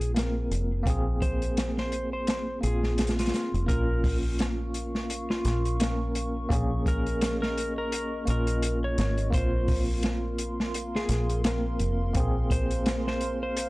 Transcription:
Already playing: fingered electric bass A#1, tine electric piano A#3 C4 F4, electric slide guitar G#4
0.01 closed hi-hat
0.14 tine electric piano A#3 C4 A#4, snare, closed hi-hat
0.51 fingered electric bass F1, closed hi-hat
0.83 fingered electric bass A#1, tine electric piano A#3 C4, kick, closed hi-hat
0.90 tine electric piano G#4
1.22 electric slide guitar C5, kick, closed hi-hat
1.42 closed hi-hat
1.57 snare, closed hi-hat
1.78 electric slide guitar C5, snare
1.92 closed hi-hat
2.13 electric slide guitar C5
2.27 snare, closed hi-hat
2.61 fingered electric bass A#1, tine electric piano A#3 C4, electric slide guitar G#4, closed hi-hat
2.67 tine electric piano F4
2.83 snare
2.98 snare, closed hi-hat
3.07 snare, closed hi-hat
3.19 electric slide guitar F4, snare, closed hi-hat
3.26 snare, closed hi-hat
3.34 snare, closed hi-hat
3.54 fingered electric bass F1, closed hi-hat
3.67 fingered electric bass A#1, tine electric piano A#3 C#4, electric slide guitar A#4, analog synth pad A#4 F5 C#6, kick, closed hi-hat
3.73 tine electric piano F4
4.04 kick, open hi-hat
4.39 snare, closed hi-hat
4.74 closed hi-hat
4.95 snare
5.10 closed hi-hat
5.30 electric slide guitar F4, snare
5.45 fingered electric bass A#1, snare, closed hi-hat
5.65 closed hi-hat
5.80 tine electric piano A#3 C#4 A#4, snare, closed hi-hat
6.15 closed hi-hat
6.49 fingered electric bass A#1, tine electric piano A#3 C#4, analog synth pad D#5, kick, closed hi-hat
6.55 tine electric piano G#4
6.86 electric slide guitar A#4, kick, closed hi-hat
7.06 closed hi-hat
7.21 snare, closed hi-hat
7.42 electric slide guitar A#4, snare
7.58 closed hi-hat
7.78 electric slide guitar A#4
7.92 closed hi-hat
8.25 fingered electric bass A#1, tine electric piano A#3 C#4, closed hi-hat
8.30 tine electric piano F4, electric slide guitar A#4
8.47 closed hi-hat
8.63 closed hi-hat
8.84 electric slide guitar C#5
8.98 fingered electric bass G#1, snare, closed hi-hat
9.18 closed hi-hat
9.31 fingered electric bass A#1, tine electric piano A#3 C4, electric slide guitar C5, analog synth pad F5 C6, kick, closed hi-hat
9.37 tine electric piano F4
9.68 kick, open hi-hat
10.03 snare, closed hi-hat
10.38 closed hi-hat
10.60 snare
10.74 closed hi-hat
10.95 electric slide guitar G#4, snare
11.09 fingered electric bass A#1, snare, closed hi-hat
11.30 closed hi-hat
11.44 tine electric piano A#3 C4 A#4, snare, closed hi-hat
11.79 fingered electric bass F1, closed hi-hat
12.13 fingered electric bass A#1, tine electric piano A#3 C4, kick, closed hi-hat
12.20 tine electric piano G#4
12.51 electric slide guitar C5, kick, closed hi-hat
12.71 closed hi-hat
12.86 snare, closed hi-hat
13.07 electric slide guitar C5, snare
13.21 closed hi-hat
13.43 electric slide guitar C5
13.57 closed hi-hat

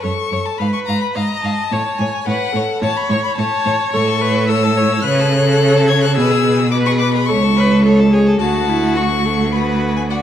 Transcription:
0.02 cello F#2, viola A4, violin C#5 C#6
0.32 cello F#2, violin C#5
0.45 violin A5
0.58 cello G#2, viola B4, violin F5 B5
0.73 violin C#6
0.86 cello G#2, violin F5 A#5
1.02 violin B5
1.15 cello G#2, viola D#5, violin F5 A#5
1.43 cello G#2, violin F5 A5
1.72 cello A2, violin C#5, viola C#5
1.98 cello A2, violin C#5 G#5
2.26 cello A2, viola B4, violin C#5 F#5
2.54 cello A2, viola A4, violin C#5
2.82 cello A2, viola C#5, violin C#5 A5
2.97 violin B5
3.10 cello A2, violin C#5 C#6
3.24 violin B5
3.36 cello A2, viola C#5, violin C#5 A5
3.66 cello A2, violin C#5
3.92 cello A2, viola A4, violin C#5 C#6
4.08 violin A4
4.21 viola B4, violin C#5
4.36 violin A4
4.48 viola A4, violin C#5 E6
4.63 violin A4
4.77 viola C#5, violin C#5
4.93 violin A4
5.03 cello C#3, viola B4, violin C#5 F#6
5.20 violin A4
5.32 viola A4, violin C#5
5.49 violin A4
5.62 violin C#5
5.76 violin A4
5.87 violin C#5 G#6
6.03 violin A4 F#6
6.16 cello B2, viola G#4, violin B4 E6
6.32 violin G#4
6.44 violin B4
6.59 violin G#4
6.71 viola B4, violin B4 D6
6.86 violin G#4 C#6
6.99 violin B4 D6
7.14 violin G#4 B5
7.26 cello C#2, viola A4, violin C#5 C#6
7.43 violin A4
7.56 viola B4, violin C#5
7.72 violin A4
7.85 viola A4, violin C#5
8.00 violin A4
8.12 viola G#4, violin C#5
8.27 violin A4
8.39 cello D2, viola F#4, violin F#4 A5
8.69 viola E4
8.97 viola F#4, violin C#6
9.25 viola A4
9.52 violin F#4 B5, viola B4
9.96 violin G#5
10.10 violin F#4 F#5, viola D5

